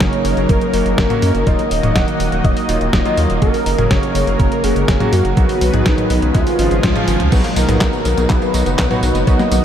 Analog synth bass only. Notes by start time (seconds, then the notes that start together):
0.01 F#1
0.25 F#1
0.37 F#1
0.49 F#1
0.74 F#1
0.86 F#1
0.98 F#1
1.23 F#2
1.35 F#1
1.47 D#1
1.71 D#1
1.83 D#1
1.96 D#1
2.20 D#1
2.32 D#1
2.44 D#1
2.69 D#1
2.81 D#1
2.93 D#1
3.18 D#2
3.30 D#1
3.42 F#1
3.66 F#1
3.79 F#1
3.91 F#1
4.15 F#1
4.27 F#1
4.40 F#1
4.64 F#1
4.76 F#1
4.88 F#1
5.13 F#2
5.25 F#1
5.37 B1
5.62 B1
5.74 B1
5.86 B1
6.10 B1
6.22 B1
6.35 C#2
6.59 G#1
6.71 G#1
6.83 C#2
7.08 G#1
7.20 C#2
7.32 B1
7.56 B1
7.69 B1
7.81 B1
8.05 B1
8.18 B1
8.30 B1
8.54 B1
8.66 F#1
8.79 B1
9.03 B1
9.15 F#1
9.27 B1
9.52 B1